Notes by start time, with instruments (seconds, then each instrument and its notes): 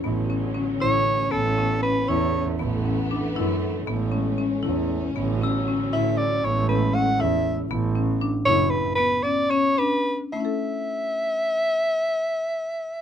0.02 double bass A1, string section D3 F#3 C#4, marimba B3
0.30 marimba C#4
0.55 marimba C#4
0.80 double bass A1, marimba E4, soprano saxophone C#5
1.31 double bass A1, string section A3 B3, marimba B3, soprano saxophone A4
1.58 marimba C#4
1.83 marimba C#4, soprano saxophone B4
2.08 double bass E2, marimba E4, soprano saxophone C#5
2.59 double bass A1, string section E3 B3, marimba B3
2.85 marimba C#4
3.11 marimba D4
3.35 double bass F#2, marimba E4
3.85 double bass A1, string section G#3 C#4, marimba B3
4.12 marimba C#4
4.38 marimba C#4
4.62 double bass E2, marimba E4
5.14 double bass A1, string section D3 F#3, marimba B3
5.41 marimba C#4, glockenspiel E6
5.68 marimba C#4
5.92 double bass A1, marimba E4, soprano saxophone E5
6.18 soprano saxophone D5
6.43 double bass A1, string section G#3 A3, marimba B3, soprano saxophone C#5
6.69 marimba C#4, soprano saxophone B4
6.94 marimba C#4, soprano saxophone F#5
7.18 double bass E2, marimba E4, soprano saxophone E5
7.69 double bass A1, marimba B3
7.95 marimba C#4
8.21 marimba D4
8.45 double bass F#1, marimba E4, soprano saxophone C#5
8.70 soprano saxophone B4
8.95 marimba B3, soprano saxophone B4
9.23 marimba C#4, soprano saxophone D5
9.50 marimba C#4, soprano saxophone C#5
9.78 marimba D4, soprano saxophone B4
10.33 marimba A3 C#4, soprano saxophone E5
10.40 marimba E4
10.45 marimba A4